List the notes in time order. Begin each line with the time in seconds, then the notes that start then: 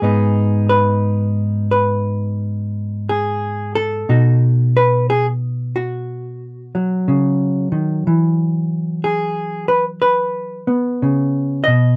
Already playing: G#4
0.02 G#2 B3 D#4
0.69 B4
1.71 B4
3.09 G#4
3.75 A4
4.09 B2 D#4 F#4
4.77 B4
5.10 G#4
5.76 F#4
6.75 F#3
7.08 C#3
7.72 D#3
8.07 E3
9.04 G#4
9.68 B4
10.02 B4
10.67 B3
11.02 C#3
11.64 B2 D#5